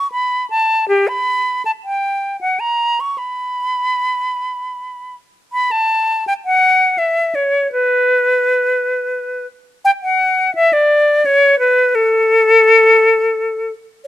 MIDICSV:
0, 0, Header, 1, 2, 480
1, 0, Start_track
1, 0, Key_signature, 2, "minor"
1, 0, Tempo, 763359
1, 565, Time_signature, 3, 2, 24, 8
1, 1525, Tempo, 779221
1, 3445, Tempo, 738007
1, 3925, Tempo, 717703
1, 5845, Tempo, 700935
1, 9215, End_track
2, 0, Start_track
2, 0, Title_t, "Flute"
2, 0, Program_c, 0, 73
2, 0, Note_on_c, 0, 85, 73
2, 71, Note_off_c, 0, 85, 0
2, 75, Note_on_c, 0, 83, 69
2, 309, Note_off_c, 0, 83, 0
2, 316, Note_on_c, 0, 81, 66
2, 554, Note_off_c, 0, 81, 0
2, 558, Note_on_c, 0, 67, 75
2, 679, Note_on_c, 0, 83, 67
2, 688, Note_off_c, 0, 67, 0
2, 1036, Note_off_c, 0, 83, 0
2, 1040, Note_on_c, 0, 81, 65
2, 1077, Note_off_c, 0, 81, 0
2, 1159, Note_on_c, 0, 79, 62
2, 1511, Note_off_c, 0, 79, 0
2, 1515, Note_on_c, 0, 78, 54
2, 1631, Note_on_c, 0, 82, 58
2, 1641, Note_off_c, 0, 78, 0
2, 1881, Note_on_c, 0, 85, 58
2, 1890, Note_off_c, 0, 82, 0
2, 1990, Note_on_c, 0, 83, 58
2, 2000, Note_off_c, 0, 85, 0
2, 3202, Note_off_c, 0, 83, 0
2, 3435, Note_on_c, 0, 83, 72
2, 3557, Note_on_c, 0, 81, 77
2, 3566, Note_off_c, 0, 83, 0
2, 3917, Note_off_c, 0, 81, 0
2, 3921, Note_on_c, 0, 79, 76
2, 3961, Note_off_c, 0, 79, 0
2, 4040, Note_on_c, 0, 78, 77
2, 4394, Note_on_c, 0, 76, 64
2, 4404, Note_off_c, 0, 78, 0
2, 4640, Note_on_c, 0, 73, 60
2, 4650, Note_off_c, 0, 76, 0
2, 4886, Note_off_c, 0, 73, 0
2, 4890, Note_on_c, 0, 71, 71
2, 6059, Note_off_c, 0, 71, 0
2, 6322, Note_on_c, 0, 79, 96
2, 6363, Note_off_c, 0, 79, 0
2, 6443, Note_on_c, 0, 78, 69
2, 6796, Note_off_c, 0, 78, 0
2, 6804, Note_on_c, 0, 76, 93
2, 6927, Note_on_c, 0, 74, 81
2, 6937, Note_off_c, 0, 76, 0
2, 7286, Note_on_c, 0, 73, 73
2, 7296, Note_off_c, 0, 74, 0
2, 7513, Note_off_c, 0, 73, 0
2, 7517, Note_on_c, 0, 71, 73
2, 7762, Note_on_c, 0, 69, 77
2, 7772, Note_off_c, 0, 71, 0
2, 8966, Note_off_c, 0, 69, 0
2, 9215, End_track
0, 0, End_of_file